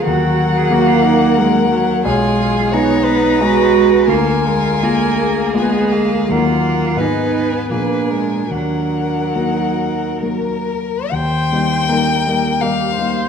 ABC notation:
X:1
M:3/4
L:1/16
Q:1/4=84
K:Ebm
V:1 name="Violin"
g12 | a4 b8 | a8 a2 f2 | g4 a4 a4 |
g8 B4 | [K:Eb] g8 f4 |]
V:2 name="Violin"
B12 | A4 d2 c6 | B2 B2 A2 A6 | B2 B2 c4 c2 B2 |
B8- B2 z2 | [K:Eb] z4 B4 B4 |]
V:3 name="Cello"
G3 A G F E2 z4 | F4 E4 G4 | F4 B4 A,4 | F4 E3 C =D4 |
=D4 E4 z4 | [K:Eb] z4 E,4 E,4 |]
V:4 name="Grand piano"
E,,4 [G,B,B]4 [G,B,B]4 | C,,4 [A,CA]4 [A,CA]4 | =D,,4 [A,B,F]4 [A,B,F]4 | [E,,G,B,E]4 [A,,A,CE]4 [B,,F,CA]4 |
E,,4 [G,B,G]4 [G,B,G]4 | [K:Eb] E,,2 [G,B,E]2 [G,B,E]2 [G,B,E]2 [G,B,E]2 [G,B,E]2 |]
V:5 name="Viola"
G,4 B,4 A,2 G,2 | A,4 C4 A,4 | B,2 A,2 B,4 C2 B,2 | B,4 C4 B,2 A,2 |
G,8- G,2 z2 | [K:Eb] c4 B4 G2 c2 |]